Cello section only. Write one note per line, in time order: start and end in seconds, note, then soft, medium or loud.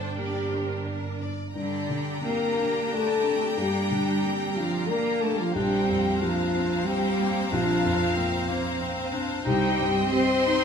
0.00 1.17 D4 soft
1.54 2.20 D3 medium
2.24 2.91 A#3 medium
2.91 3.57 A3 medium
3.58 4.55 G3 medium
4.56 4.89 F3 medium
4.89 5.22 A#3 medium
5.21 5.38 A3 medium
5.37 5.54 F3 medium
5.54 6.19 G3 medium
6.20 6.86 F3 medium
6.86 7.51 G3 medium
7.50 8.80 F3 medium
9.46 10.10 G3 medium
10.14 10.64 C4 loud